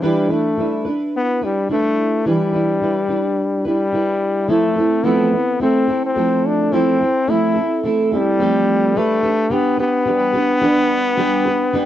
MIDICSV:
0, 0, Header, 1, 3, 480
1, 0, Start_track
1, 0, Tempo, 558140
1, 21, Time_signature, 4, 2, 24, 8
1, 10195, End_track
2, 0, Start_track
2, 0, Title_t, "Steel-string acoustic guitar"
2, 0, Program_c, 0, 25
2, 13, Note_on_c, 0, 52, 70
2, 17, Note_on_c, 0, 55, 65
2, 20, Note_on_c, 0, 62, 72
2, 25, Note_on_c, 0, 64, 70
2, 30, Note_on_c, 0, 71, 89
2, 236, Note_off_c, 0, 71, 0
2, 246, Note_on_c, 0, 71, 45
2, 251, Note_off_c, 0, 64, 0
2, 258, Note_off_c, 0, 52, 0
2, 259, Note_off_c, 0, 55, 0
2, 261, Note_off_c, 0, 62, 0
2, 261, Note_on_c, 0, 64, 41
2, 273, Note_on_c, 0, 62, 43
2, 489, Note_off_c, 0, 62, 0
2, 491, Note_on_c, 0, 55, 46
2, 495, Note_off_c, 0, 71, 0
2, 498, Note_off_c, 0, 64, 0
2, 500, Note_on_c, 0, 62, 55
2, 508, Note_on_c, 0, 64, 52
2, 517, Note_on_c, 0, 71, 49
2, 718, Note_off_c, 0, 71, 0
2, 729, Note_on_c, 0, 71, 47
2, 730, Note_off_c, 0, 64, 0
2, 737, Note_off_c, 0, 55, 0
2, 740, Note_on_c, 0, 64, 37
2, 742, Note_off_c, 0, 62, 0
2, 753, Note_on_c, 0, 62, 37
2, 1203, Note_off_c, 0, 71, 0
2, 1213, Note_on_c, 0, 71, 50
2, 1221, Note_off_c, 0, 64, 0
2, 1224, Note_on_c, 0, 64, 43
2, 1225, Note_off_c, 0, 62, 0
2, 1235, Note_on_c, 0, 62, 38
2, 1453, Note_on_c, 0, 55, 51
2, 1455, Note_off_c, 0, 62, 0
2, 1459, Note_off_c, 0, 71, 0
2, 1461, Note_off_c, 0, 64, 0
2, 1465, Note_on_c, 0, 62, 52
2, 1471, Note_on_c, 0, 64, 53
2, 1478, Note_on_c, 0, 71, 52
2, 1932, Note_off_c, 0, 55, 0
2, 1937, Note_off_c, 0, 62, 0
2, 1939, Note_on_c, 0, 52, 71
2, 1942, Note_on_c, 0, 55, 73
2, 1943, Note_off_c, 0, 71, 0
2, 1947, Note_on_c, 0, 62, 66
2, 1949, Note_off_c, 0, 64, 0
2, 1952, Note_on_c, 0, 64, 76
2, 1953, Note_on_c, 0, 71, 69
2, 2163, Note_off_c, 0, 71, 0
2, 2174, Note_on_c, 0, 71, 46
2, 2177, Note_off_c, 0, 64, 0
2, 2183, Note_off_c, 0, 52, 0
2, 2184, Note_off_c, 0, 55, 0
2, 2187, Note_off_c, 0, 62, 0
2, 2187, Note_on_c, 0, 64, 49
2, 2198, Note_on_c, 0, 62, 37
2, 2414, Note_off_c, 0, 62, 0
2, 2416, Note_on_c, 0, 55, 55
2, 2420, Note_off_c, 0, 71, 0
2, 2421, Note_off_c, 0, 64, 0
2, 2425, Note_on_c, 0, 62, 50
2, 2431, Note_on_c, 0, 64, 53
2, 2439, Note_on_c, 0, 71, 54
2, 2641, Note_off_c, 0, 71, 0
2, 2651, Note_on_c, 0, 71, 45
2, 2657, Note_off_c, 0, 64, 0
2, 2662, Note_off_c, 0, 55, 0
2, 2662, Note_off_c, 0, 62, 0
2, 2667, Note_on_c, 0, 64, 47
2, 2672, Note_on_c, 0, 62, 39
2, 3129, Note_off_c, 0, 71, 0
2, 3139, Note_on_c, 0, 71, 57
2, 3146, Note_off_c, 0, 64, 0
2, 3150, Note_off_c, 0, 62, 0
2, 3150, Note_on_c, 0, 64, 51
2, 3160, Note_on_c, 0, 62, 42
2, 3372, Note_off_c, 0, 62, 0
2, 3373, Note_on_c, 0, 55, 59
2, 3378, Note_off_c, 0, 64, 0
2, 3382, Note_on_c, 0, 62, 60
2, 3383, Note_off_c, 0, 71, 0
2, 3389, Note_on_c, 0, 64, 60
2, 3396, Note_on_c, 0, 71, 67
2, 3854, Note_on_c, 0, 53, 71
2, 3856, Note_off_c, 0, 55, 0
2, 3858, Note_off_c, 0, 62, 0
2, 3860, Note_on_c, 0, 57, 64
2, 3862, Note_off_c, 0, 64, 0
2, 3862, Note_on_c, 0, 60, 70
2, 3865, Note_off_c, 0, 71, 0
2, 3865, Note_on_c, 0, 64, 81
2, 3868, Note_on_c, 0, 69, 76
2, 4081, Note_off_c, 0, 69, 0
2, 4092, Note_on_c, 0, 69, 51
2, 4098, Note_off_c, 0, 64, 0
2, 4101, Note_off_c, 0, 53, 0
2, 4104, Note_off_c, 0, 57, 0
2, 4105, Note_off_c, 0, 60, 0
2, 4108, Note_on_c, 0, 64, 43
2, 4118, Note_on_c, 0, 60, 43
2, 4329, Note_off_c, 0, 60, 0
2, 4329, Note_on_c, 0, 53, 71
2, 4333, Note_off_c, 0, 64, 0
2, 4334, Note_on_c, 0, 57, 76
2, 4336, Note_off_c, 0, 69, 0
2, 4340, Note_on_c, 0, 60, 73
2, 4343, Note_on_c, 0, 64, 68
2, 4346, Note_on_c, 0, 69, 71
2, 4563, Note_off_c, 0, 69, 0
2, 4574, Note_on_c, 0, 69, 49
2, 4577, Note_off_c, 0, 64, 0
2, 4579, Note_off_c, 0, 53, 0
2, 4581, Note_off_c, 0, 57, 0
2, 4584, Note_off_c, 0, 60, 0
2, 4588, Note_on_c, 0, 64, 41
2, 4597, Note_on_c, 0, 60, 36
2, 4813, Note_on_c, 0, 57, 58
2, 4814, Note_off_c, 0, 60, 0
2, 4817, Note_off_c, 0, 64, 0
2, 4821, Note_off_c, 0, 69, 0
2, 4824, Note_on_c, 0, 60, 60
2, 4828, Note_on_c, 0, 64, 60
2, 4836, Note_on_c, 0, 69, 66
2, 5044, Note_off_c, 0, 69, 0
2, 5054, Note_on_c, 0, 69, 44
2, 5059, Note_off_c, 0, 64, 0
2, 5061, Note_off_c, 0, 57, 0
2, 5066, Note_off_c, 0, 60, 0
2, 5070, Note_on_c, 0, 64, 45
2, 5079, Note_on_c, 0, 60, 44
2, 5291, Note_off_c, 0, 60, 0
2, 5294, Note_on_c, 0, 53, 67
2, 5296, Note_off_c, 0, 64, 0
2, 5298, Note_on_c, 0, 57, 70
2, 5301, Note_off_c, 0, 69, 0
2, 5301, Note_on_c, 0, 60, 71
2, 5306, Note_on_c, 0, 64, 67
2, 5310, Note_on_c, 0, 69, 68
2, 5768, Note_off_c, 0, 53, 0
2, 5771, Note_off_c, 0, 57, 0
2, 5776, Note_off_c, 0, 60, 0
2, 5778, Note_on_c, 0, 53, 76
2, 5779, Note_off_c, 0, 64, 0
2, 5782, Note_on_c, 0, 57, 68
2, 5783, Note_off_c, 0, 69, 0
2, 5786, Note_on_c, 0, 60, 74
2, 5789, Note_on_c, 0, 64, 82
2, 5793, Note_on_c, 0, 69, 76
2, 6011, Note_off_c, 0, 69, 0
2, 6021, Note_on_c, 0, 69, 46
2, 6023, Note_off_c, 0, 53, 0
2, 6023, Note_off_c, 0, 64, 0
2, 6024, Note_off_c, 0, 57, 0
2, 6027, Note_off_c, 0, 60, 0
2, 6034, Note_on_c, 0, 64, 49
2, 6254, Note_on_c, 0, 53, 73
2, 6257, Note_off_c, 0, 64, 0
2, 6258, Note_on_c, 0, 57, 72
2, 6261, Note_off_c, 0, 69, 0
2, 6263, Note_on_c, 0, 60, 77
2, 6267, Note_on_c, 0, 64, 76
2, 6272, Note_on_c, 0, 69, 77
2, 6483, Note_off_c, 0, 69, 0
2, 6493, Note_on_c, 0, 69, 51
2, 6495, Note_off_c, 0, 64, 0
2, 6500, Note_off_c, 0, 53, 0
2, 6502, Note_off_c, 0, 57, 0
2, 6505, Note_off_c, 0, 60, 0
2, 6506, Note_on_c, 0, 64, 44
2, 6516, Note_on_c, 0, 60, 38
2, 6735, Note_off_c, 0, 60, 0
2, 6736, Note_on_c, 0, 57, 65
2, 6739, Note_off_c, 0, 69, 0
2, 6740, Note_off_c, 0, 64, 0
2, 6745, Note_on_c, 0, 60, 63
2, 6750, Note_on_c, 0, 64, 67
2, 6757, Note_on_c, 0, 69, 70
2, 6968, Note_off_c, 0, 69, 0
2, 6979, Note_off_c, 0, 64, 0
2, 6979, Note_on_c, 0, 69, 54
2, 6980, Note_off_c, 0, 57, 0
2, 6985, Note_off_c, 0, 60, 0
2, 6990, Note_on_c, 0, 64, 48
2, 7001, Note_on_c, 0, 60, 41
2, 7213, Note_off_c, 0, 60, 0
2, 7215, Note_on_c, 0, 53, 66
2, 7219, Note_off_c, 0, 64, 0
2, 7220, Note_on_c, 0, 57, 75
2, 7222, Note_off_c, 0, 69, 0
2, 7224, Note_on_c, 0, 60, 73
2, 7229, Note_on_c, 0, 64, 76
2, 7234, Note_on_c, 0, 69, 89
2, 7693, Note_off_c, 0, 57, 0
2, 7696, Note_on_c, 0, 55, 73
2, 7698, Note_off_c, 0, 60, 0
2, 7699, Note_off_c, 0, 53, 0
2, 7701, Note_on_c, 0, 62, 71
2, 7706, Note_off_c, 0, 64, 0
2, 7708, Note_off_c, 0, 69, 0
2, 7709, Note_on_c, 0, 67, 79
2, 7711, Note_on_c, 0, 71, 85
2, 7922, Note_off_c, 0, 71, 0
2, 7932, Note_on_c, 0, 71, 55
2, 7934, Note_off_c, 0, 67, 0
2, 7939, Note_off_c, 0, 55, 0
2, 7942, Note_off_c, 0, 62, 0
2, 7945, Note_on_c, 0, 67, 50
2, 7955, Note_on_c, 0, 62, 39
2, 8164, Note_off_c, 0, 62, 0
2, 8166, Note_on_c, 0, 55, 79
2, 8169, Note_off_c, 0, 67, 0
2, 8174, Note_on_c, 0, 62, 69
2, 8175, Note_off_c, 0, 71, 0
2, 8179, Note_on_c, 0, 67, 78
2, 8185, Note_on_c, 0, 71, 77
2, 8395, Note_off_c, 0, 71, 0
2, 8405, Note_on_c, 0, 71, 46
2, 8409, Note_off_c, 0, 67, 0
2, 8414, Note_off_c, 0, 55, 0
2, 8418, Note_off_c, 0, 62, 0
2, 8419, Note_on_c, 0, 67, 39
2, 8428, Note_on_c, 0, 62, 40
2, 8644, Note_off_c, 0, 62, 0
2, 8646, Note_on_c, 0, 55, 58
2, 8651, Note_off_c, 0, 67, 0
2, 8653, Note_off_c, 0, 71, 0
2, 8655, Note_on_c, 0, 62, 65
2, 8661, Note_on_c, 0, 67, 67
2, 8670, Note_on_c, 0, 71, 66
2, 8875, Note_off_c, 0, 71, 0
2, 8885, Note_on_c, 0, 71, 51
2, 8889, Note_off_c, 0, 67, 0
2, 8893, Note_off_c, 0, 55, 0
2, 8897, Note_off_c, 0, 62, 0
2, 8899, Note_on_c, 0, 67, 46
2, 8911, Note_on_c, 0, 62, 43
2, 9120, Note_off_c, 0, 62, 0
2, 9126, Note_off_c, 0, 67, 0
2, 9126, Note_on_c, 0, 55, 80
2, 9129, Note_off_c, 0, 71, 0
2, 9131, Note_on_c, 0, 62, 80
2, 9136, Note_on_c, 0, 67, 84
2, 9139, Note_on_c, 0, 71, 84
2, 9602, Note_off_c, 0, 62, 0
2, 9604, Note_off_c, 0, 55, 0
2, 9608, Note_on_c, 0, 55, 90
2, 9613, Note_off_c, 0, 71, 0
2, 9613, Note_on_c, 0, 62, 94
2, 9614, Note_off_c, 0, 67, 0
2, 9618, Note_on_c, 0, 67, 93
2, 9623, Note_on_c, 0, 71, 97
2, 9840, Note_off_c, 0, 71, 0
2, 9851, Note_on_c, 0, 71, 62
2, 9852, Note_off_c, 0, 55, 0
2, 9852, Note_off_c, 0, 67, 0
2, 9855, Note_off_c, 0, 62, 0
2, 9862, Note_on_c, 0, 67, 50
2, 9873, Note_on_c, 0, 62, 49
2, 10087, Note_off_c, 0, 62, 0
2, 10090, Note_on_c, 0, 55, 93
2, 10091, Note_off_c, 0, 67, 0
2, 10093, Note_off_c, 0, 71, 0
2, 10098, Note_on_c, 0, 62, 83
2, 10101, Note_on_c, 0, 67, 102
2, 10107, Note_on_c, 0, 71, 102
2, 10195, Note_off_c, 0, 55, 0
2, 10195, Note_off_c, 0, 62, 0
2, 10195, Note_off_c, 0, 67, 0
2, 10195, Note_off_c, 0, 71, 0
2, 10195, End_track
3, 0, Start_track
3, 0, Title_t, "Trombone"
3, 0, Program_c, 1, 57
3, 25, Note_on_c, 1, 55, 74
3, 276, Note_on_c, 1, 57, 75
3, 289, Note_off_c, 1, 55, 0
3, 760, Note_off_c, 1, 57, 0
3, 1001, Note_on_c, 1, 59, 100
3, 1235, Note_on_c, 1, 55, 83
3, 1248, Note_off_c, 1, 59, 0
3, 1470, Note_off_c, 1, 55, 0
3, 1476, Note_on_c, 1, 57, 94
3, 1918, Note_off_c, 1, 57, 0
3, 1959, Note_on_c, 1, 55, 75
3, 3120, Note_off_c, 1, 55, 0
3, 3159, Note_on_c, 1, 55, 82
3, 3871, Note_on_c, 1, 57, 80
3, 3884, Note_off_c, 1, 55, 0
3, 4349, Note_on_c, 1, 59, 84
3, 4361, Note_off_c, 1, 57, 0
3, 4828, Note_off_c, 1, 59, 0
3, 4840, Note_on_c, 1, 60, 85
3, 5180, Note_off_c, 1, 60, 0
3, 5211, Note_on_c, 1, 60, 83
3, 5563, Note_on_c, 1, 62, 80
3, 5576, Note_off_c, 1, 60, 0
3, 5800, Note_on_c, 1, 60, 97
3, 5813, Note_off_c, 1, 62, 0
3, 6282, Note_on_c, 1, 64, 92
3, 6295, Note_off_c, 1, 60, 0
3, 6754, Note_off_c, 1, 64, 0
3, 6999, Note_on_c, 1, 55, 95
3, 7714, Note_on_c, 1, 57, 101
3, 7727, Note_off_c, 1, 55, 0
3, 8192, Note_on_c, 1, 59, 106
3, 8204, Note_off_c, 1, 57, 0
3, 8427, Note_off_c, 1, 59, 0
3, 8431, Note_on_c, 1, 59, 120
3, 10195, Note_off_c, 1, 59, 0
3, 10195, End_track
0, 0, End_of_file